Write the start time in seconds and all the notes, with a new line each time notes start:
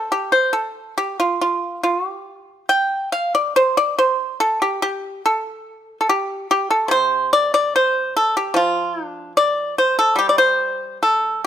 0.12 G4
0.32 C5
0.53 A4
0.98 G4
1.20 F4
1.41 F4
1.83 F4
2.07 G4
2.69 G5
3.12 F5
3.35 D5
3.56 C5
3.77 D5
3.99 C5
4.40 A4
4.62 G4
4.82 G4
5.26 A4
6.01 A4
6.09 G4
6.51 G4
6.71 A4
6.88 C3 C5
7.33 D5
7.54 D5
7.76 C5
8.17 A4
8.37 G4
8.54 F3 F4
9.06 D4
9.37 D5
9.78 C5
9.99 A4
10.16 G3 G4
10.29 D5
10.38 C5
11.03 A4